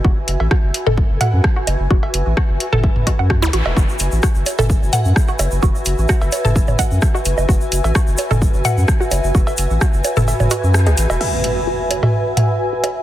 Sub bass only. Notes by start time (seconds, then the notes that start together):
0.05 F#1
0.28 F#1
0.40 A1
0.63 F#1
0.87 F#1
1.10 F#1
1.33 F#2
1.67 F#1
1.80 F#1
1.91 F#1
2.14 F#1
2.26 A1
2.49 F#1
2.73 F#1
2.96 F#1
3.19 F#2
3.42 C#2
3.53 A1
3.66 E1
3.77 F#1
4.00 F#1
4.12 A1
4.35 F#1
4.59 F#1
4.82 F#1
5.05 F#2
5.39 F#1
5.52 F#1
5.63 F#1
5.86 F#1
5.98 A1
6.22 F#1
6.45 F#1
6.68 F#1
6.91 F#2
7.25 F#1
7.38 F#1
7.49 F#1
7.72 F#1
7.84 A1
8.07 F#1
8.31 F#1
8.54 F#1
8.77 F#2
9.11 F#1
9.24 F#1
9.35 F#1
9.58 F#1
9.70 A1
9.94 F#1
10.17 F#1
10.40 F#1
10.63 F#2
10.87 C#2
10.98 A1
11.10 E1